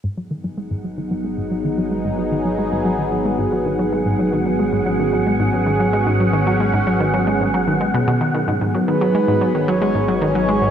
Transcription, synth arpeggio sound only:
X:1
M:4/4
L:1/16
Q:1/4=112
K:G#m
V:1 name="Synth arpeggio sound" clef=bass
G,, F, D, F, G, G,, F, D, F, G, G,, F, D, F, G, G,, | F, D, F, G, G,, F, D, F, G, G,, F, D, F, G, G,, F, | D, F, G, G,, F, D, F, G, G,, F, D, F, G, G,, F, D, | F, G, G,, F, D, F, G, G,, F, D, G, B,, B,, D, D, G,, |
G,, F, D, F, G, G,, F, D, F, G, G,, F, D, F, G, G,, |]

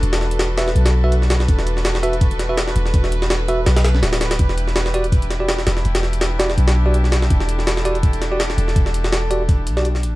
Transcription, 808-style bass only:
X:1
M:4/4
L:1/8
Q:"Swing 16ths" 1/4=165
K:Em
V:1 name="808-style bass" clef=bass
E,,,4 B,,,4 | E,,,6- E,,, E,,, | E,,,4 B,,,2 D,,,2 | E,,,6- E,,, E,,, |
E,,,4 B,,,4 | E,,,6- E,,, E,,, | E,,,4- E,,, B,,,2 A,,, |]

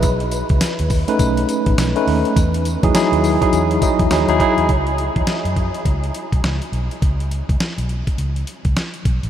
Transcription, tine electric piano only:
X:1
M:4/4
L:1/16
Q:"Swing 16ths" 1/4=103
K:C#m
V:1 name="Tine electric piano"
[GB] z6 [A,CDB]6 [A,CDB]3 | z3 [F,DEG] [F,DEG]3 [F,DEG]3 [F,DEG]2 [F,DEG] [F,DEG] [F,DEG]2 | z16 | z16 |]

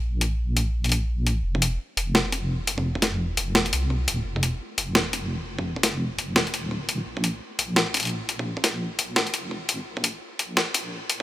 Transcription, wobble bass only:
X:1
M:4/4
L:1/8
Q:"Swing 16ths" 1/4=171
K:Bbdor
V:1 name="Wobble bass" clef=bass
B,,,8 | F,,,2 z F,,,4- F,,,- | F,,,3 F,,,2 C,,2 E,,, | F,,,2 z F,,,4- F,,,- |
F,,,3 F,,,2 E,,,2 E,,, | B,,,2 z B,,,4- B,,,- | B,,,3 B,,,2 F,,,2 A,,, | B,,,2 z B,,,4- B,,, |]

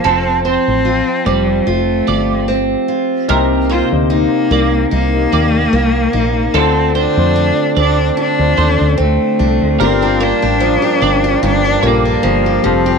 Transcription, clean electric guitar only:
X:1
M:4/4
L:1/16
Q:"Swing 16ths" 1/4=74
K:Gm
V:1 name="Clean electric guitar"
A2 c3 z d z3 d2 z4 | B2 c3 z d z3 d2 z4 | A2 c3 z d z3 c2 z4 | B2 c3 z d z3 d2 z4 |]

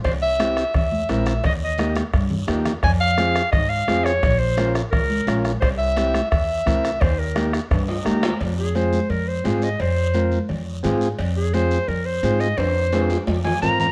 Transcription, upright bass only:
X:1
M:4/4
L:1/8
Q:1/4=172
K:Fm
V:1 name="Upright bass" clef=bass
C,,4 =E,,2 B,,,2 | E,,4 G,,2 E,,2 | F,,4 A,,2 F,,2 | B,,,4 D,,2 B,,,2 |
C,,4 =E,,2 C,,2 | E,,4 G,,2 E,,2 | F,,4 F,,2 A,,2 | F,,4 F,,2 A,,2 |
F,,4 F,,2 A,,2 | F,,4 F,,2 A,,2 |]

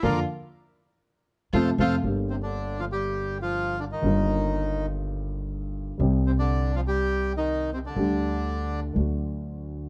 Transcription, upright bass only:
X:1
M:4/4
L:1/8
Q:1/4=121
K:Fmix
V:1 name="Upright bass" clef=bass
F,, z4 z F,, F,, | [K:Gm] G,,,8 | G,,,8 | C,,8 |
D,,4 D,,4 |]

